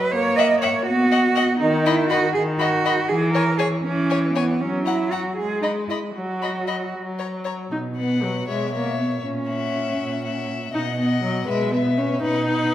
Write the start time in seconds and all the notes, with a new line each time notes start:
Already playing: B4
0.11 A#3 C#5
0.36 D#5 E5 F#5
0.61 C#5 E5 F#5
0.86 B3 F#4
1.12 D#5 F#5
1.35 D#5 F#5
1.60 D#3 D#4
1.85 E4 D#5 B5
2.10 F#4 D#5 B5
2.34 D#3 G#4
2.59 F#4 D#5 B5
2.85 D#5 B5
3.09 E3 G#4
3.34 A#4 C#5 G#5
3.58 G#4 C#5 G#5
3.83 E3 C#4
4.10 C#5 G#5
4.35 B3 C#5 G#5
4.60 F#3 C#4
4.86 E4 F#5 A#5
5.11 F#4 F#5 A#5
5.37 G#3 G#4
5.62 D#4 D#5 B5
5.88 E4 D#5 B5
6.14 F#3 F#4
6.42 D#5 B5
6.67 D#5 B5
6.93 F#3
7.19 C#5 A#5
7.44 C#5 A#5
7.71 B2 D#4
7.97 B3 B4 F#5
8.23 F#3
8.47 B2 G#3 C#5 E5
8.73 A#3 C#5 E5
8.98 B3
9.22 A#2 C#4
9.49 E5 F#5
9.98 A#2
10.24 E5 F#5
10.73 B2 D#4 D#5 F#5
10.97 B3 D#5 F#5
11.23 F#3
11.47 B2 G#3 B4 E5
11.71 B3 B4 E5
11.97 C#4
12.22 B2 D#4 B4 F#5
12.48 B4 F#5